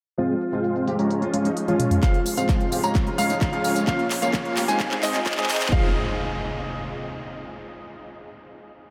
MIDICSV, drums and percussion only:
0, 0, Header, 1, 2, 480
1, 0, Start_track
1, 0, Key_signature, -4, "minor"
1, 0, Tempo, 461538
1, 190, Time_signature, 4, 2, 24, 8
1, 9259, End_track
2, 0, Start_track
2, 0, Title_t, "Drums"
2, 311, Note_on_c, 9, 42, 26
2, 415, Note_off_c, 9, 42, 0
2, 430, Note_on_c, 9, 42, 93
2, 534, Note_off_c, 9, 42, 0
2, 550, Note_on_c, 9, 42, 55
2, 654, Note_off_c, 9, 42, 0
2, 670, Note_on_c, 9, 42, 56
2, 774, Note_off_c, 9, 42, 0
2, 790, Note_on_c, 9, 42, 26
2, 894, Note_off_c, 9, 42, 0
2, 911, Note_on_c, 9, 42, 87
2, 1015, Note_off_c, 9, 42, 0
2, 1030, Note_on_c, 9, 42, 51
2, 1134, Note_off_c, 9, 42, 0
2, 1150, Note_on_c, 9, 42, 53
2, 1254, Note_off_c, 9, 42, 0
2, 1270, Note_on_c, 9, 42, 26
2, 1374, Note_off_c, 9, 42, 0
2, 1390, Note_on_c, 9, 42, 96
2, 1494, Note_off_c, 9, 42, 0
2, 1510, Note_on_c, 9, 42, 53
2, 1614, Note_off_c, 9, 42, 0
2, 1630, Note_on_c, 9, 42, 55
2, 1734, Note_off_c, 9, 42, 0
2, 1750, Note_on_c, 9, 42, 26
2, 1750, Note_on_c, 9, 48, 50
2, 1854, Note_off_c, 9, 42, 0
2, 1854, Note_off_c, 9, 48, 0
2, 1869, Note_on_c, 9, 42, 98
2, 1869, Note_on_c, 9, 47, 79
2, 1973, Note_off_c, 9, 42, 0
2, 1973, Note_off_c, 9, 47, 0
2, 1989, Note_on_c, 9, 42, 54
2, 1989, Note_on_c, 9, 45, 76
2, 2093, Note_off_c, 9, 42, 0
2, 2093, Note_off_c, 9, 45, 0
2, 2109, Note_on_c, 9, 36, 123
2, 2109, Note_on_c, 9, 39, 50
2, 2109, Note_on_c, 9, 42, 57
2, 2113, Note_on_c, 9, 54, 32
2, 2213, Note_off_c, 9, 36, 0
2, 2213, Note_off_c, 9, 39, 0
2, 2213, Note_off_c, 9, 42, 0
2, 2217, Note_off_c, 9, 54, 0
2, 2228, Note_on_c, 9, 42, 27
2, 2332, Note_off_c, 9, 42, 0
2, 2348, Note_on_c, 9, 46, 104
2, 2352, Note_on_c, 9, 54, 74
2, 2452, Note_off_c, 9, 46, 0
2, 2456, Note_off_c, 9, 54, 0
2, 2468, Note_on_c, 9, 42, 54
2, 2472, Note_on_c, 9, 54, 44
2, 2572, Note_off_c, 9, 42, 0
2, 2576, Note_off_c, 9, 54, 0
2, 2589, Note_on_c, 9, 36, 118
2, 2589, Note_on_c, 9, 39, 55
2, 2589, Note_on_c, 9, 42, 55
2, 2593, Note_on_c, 9, 54, 34
2, 2693, Note_off_c, 9, 36, 0
2, 2693, Note_off_c, 9, 39, 0
2, 2693, Note_off_c, 9, 42, 0
2, 2697, Note_off_c, 9, 54, 0
2, 2709, Note_on_c, 9, 42, 26
2, 2813, Note_off_c, 9, 42, 0
2, 2829, Note_on_c, 9, 46, 96
2, 2833, Note_on_c, 9, 54, 74
2, 2933, Note_off_c, 9, 46, 0
2, 2937, Note_off_c, 9, 54, 0
2, 2949, Note_on_c, 9, 42, 53
2, 2953, Note_on_c, 9, 54, 42
2, 3053, Note_off_c, 9, 42, 0
2, 3057, Note_off_c, 9, 54, 0
2, 3069, Note_on_c, 9, 36, 126
2, 3069, Note_on_c, 9, 39, 56
2, 3069, Note_on_c, 9, 42, 54
2, 3073, Note_on_c, 9, 54, 31
2, 3173, Note_off_c, 9, 36, 0
2, 3173, Note_off_c, 9, 39, 0
2, 3173, Note_off_c, 9, 42, 0
2, 3177, Note_off_c, 9, 54, 0
2, 3189, Note_on_c, 9, 42, 26
2, 3293, Note_off_c, 9, 42, 0
2, 3310, Note_on_c, 9, 46, 104
2, 3314, Note_on_c, 9, 54, 77
2, 3414, Note_off_c, 9, 46, 0
2, 3418, Note_off_c, 9, 54, 0
2, 3430, Note_on_c, 9, 42, 56
2, 3434, Note_on_c, 9, 54, 43
2, 3534, Note_off_c, 9, 42, 0
2, 3538, Note_off_c, 9, 54, 0
2, 3550, Note_on_c, 9, 36, 114
2, 3550, Note_on_c, 9, 39, 69
2, 3550, Note_on_c, 9, 42, 57
2, 3554, Note_on_c, 9, 54, 35
2, 3654, Note_off_c, 9, 36, 0
2, 3654, Note_off_c, 9, 39, 0
2, 3654, Note_off_c, 9, 42, 0
2, 3658, Note_off_c, 9, 54, 0
2, 3670, Note_on_c, 9, 42, 27
2, 3774, Note_off_c, 9, 42, 0
2, 3789, Note_on_c, 9, 46, 98
2, 3793, Note_on_c, 9, 54, 81
2, 3893, Note_off_c, 9, 46, 0
2, 3897, Note_off_c, 9, 54, 0
2, 3909, Note_on_c, 9, 42, 55
2, 3913, Note_on_c, 9, 54, 45
2, 4013, Note_off_c, 9, 42, 0
2, 4017, Note_off_c, 9, 54, 0
2, 4029, Note_on_c, 9, 36, 127
2, 4029, Note_on_c, 9, 39, 75
2, 4029, Note_on_c, 9, 42, 56
2, 4033, Note_on_c, 9, 54, 34
2, 4133, Note_off_c, 9, 36, 0
2, 4133, Note_off_c, 9, 39, 0
2, 4133, Note_off_c, 9, 42, 0
2, 4137, Note_off_c, 9, 54, 0
2, 4150, Note_on_c, 9, 42, 27
2, 4254, Note_off_c, 9, 42, 0
2, 4270, Note_on_c, 9, 39, 78
2, 4270, Note_on_c, 9, 46, 112
2, 4274, Note_on_c, 9, 54, 75
2, 4374, Note_off_c, 9, 39, 0
2, 4374, Note_off_c, 9, 46, 0
2, 4378, Note_off_c, 9, 54, 0
2, 4391, Note_on_c, 9, 42, 55
2, 4395, Note_on_c, 9, 54, 45
2, 4495, Note_off_c, 9, 42, 0
2, 4499, Note_off_c, 9, 54, 0
2, 4509, Note_on_c, 9, 36, 126
2, 4510, Note_on_c, 9, 39, 83
2, 4510, Note_on_c, 9, 42, 59
2, 4515, Note_on_c, 9, 54, 32
2, 4613, Note_off_c, 9, 36, 0
2, 4614, Note_off_c, 9, 39, 0
2, 4614, Note_off_c, 9, 42, 0
2, 4619, Note_off_c, 9, 54, 0
2, 4631, Note_on_c, 9, 42, 27
2, 4735, Note_off_c, 9, 42, 0
2, 4751, Note_on_c, 9, 39, 86
2, 4751, Note_on_c, 9, 46, 98
2, 4755, Note_on_c, 9, 54, 74
2, 4855, Note_off_c, 9, 39, 0
2, 4855, Note_off_c, 9, 46, 0
2, 4859, Note_off_c, 9, 54, 0
2, 4871, Note_on_c, 9, 42, 53
2, 4875, Note_on_c, 9, 54, 40
2, 4975, Note_off_c, 9, 42, 0
2, 4979, Note_off_c, 9, 54, 0
2, 4990, Note_on_c, 9, 36, 124
2, 4990, Note_on_c, 9, 39, 94
2, 4990, Note_on_c, 9, 42, 50
2, 4994, Note_on_c, 9, 54, 33
2, 5094, Note_off_c, 9, 36, 0
2, 5094, Note_off_c, 9, 39, 0
2, 5094, Note_off_c, 9, 42, 0
2, 5098, Note_off_c, 9, 54, 0
2, 5111, Note_on_c, 9, 39, 87
2, 5111, Note_on_c, 9, 42, 27
2, 5215, Note_off_c, 9, 39, 0
2, 5215, Note_off_c, 9, 42, 0
2, 5231, Note_on_c, 9, 39, 100
2, 5231, Note_on_c, 9, 46, 111
2, 5235, Note_on_c, 9, 54, 78
2, 5335, Note_off_c, 9, 39, 0
2, 5335, Note_off_c, 9, 46, 0
2, 5339, Note_off_c, 9, 54, 0
2, 5351, Note_on_c, 9, 39, 81
2, 5351, Note_on_c, 9, 42, 53
2, 5355, Note_on_c, 9, 54, 41
2, 5455, Note_off_c, 9, 39, 0
2, 5455, Note_off_c, 9, 42, 0
2, 5459, Note_off_c, 9, 54, 0
2, 5470, Note_on_c, 9, 36, 127
2, 5471, Note_on_c, 9, 39, 106
2, 5471, Note_on_c, 9, 42, 53
2, 5475, Note_on_c, 9, 54, 34
2, 5531, Note_off_c, 9, 39, 0
2, 5531, Note_on_c, 9, 39, 97
2, 5574, Note_off_c, 9, 36, 0
2, 5575, Note_off_c, 9, 42, 0
2, 5579, Note_off_c, 9, 54, 0
2, 5591, Note_off_c, 9, 39, 0
2, 5591, Note_on_c, 9, 39, 84
2, 5591, Note_on_c, 9, 42, 27
2, 5651, Note_off_c, 9, 39, 0
2, 5651, Note_on_c, 9, 39, 90
2, 5695, Note_off_c, 9, 42, 0
2, 5711, Note_off_c, 9, 39, 0
2, 5711, Note_on_c, 9, 39, 111
2, 5711, Note_on_c, 9, 46, 100
2, 5716, Note_on_c, 9, 54, 84
2, 5772, Note_off_c, 9, 39, 0
2, 5772, Note_on_c, 9, 39, 94
2, 5815, Note_off_c, 9, 46, 0
2, 5820, Note_off_c, 9, 54, 0
2, 5831, Note_off_c, 9, 39, 0
2, 5831, Note_on_c, 9, 39, 101
2, 5831, Note_on_c, 9, 42, 55
2, 5835, Note_on_c, 9, 54, 44
2, 5891, Note_off_c, 9, 39, 0
2, 5891, Note_on_c, 9, 39, 100
2, 5935, Note_off_c, 9, 42, 0
2, 5939, Note_off_c, 9, 54, 0
2, 5951, Note_on_c, 9, 36, 120
2, 5995, Note_off_c, 9, 39, 0
2, 6055, Note_off_c, 9, 36, 0
2, 9259, End_track
0, 0, End_of_file